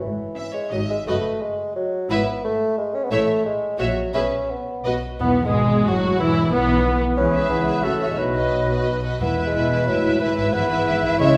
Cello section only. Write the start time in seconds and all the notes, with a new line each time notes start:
0.02 G#2
0.72 G#2
1.07 F#2
2.10 G#2
3.11 A2
3.79 A#2
4.14 B2
4.85 B2
5.20 E3
5.45 B2
5.87 A2
6.20 G#2
6.52 E3
7.17 E3
7.50 E3
7.84 C#3
8.10 B2
8.19 B2
9.21 E3
9.46 B2
9.88 A2
10.21 G#2
10.54 E3
11.20 C#3